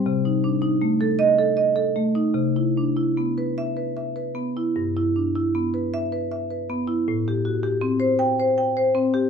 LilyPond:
\new Staff \with { instrumentName = "Marimba" } { \time 3/4 \key c \lydian \tempo 4 = 79 << { r4. ees''8 r4 | r4. e''8 r4 | r4. e''8 r4 | r4. g''8 r4 | } \\ { c16 ees'16 d'16 ees'16 a16 a'8 a'16 ees''16 a'16 a16 ees'16 | c16 e'16 d'16 e'16 b16 b'8 b'16 e''16 b'16 b16 e'16 | g,16 e'16 d'16 e'16 b16 b'8 b'16 e''16 b'16 b16 e'16 | a,16 g'16 fis'16 g'16 c'16 c''8 c''16 g''16 c''16 c'16 g'16 | } >> }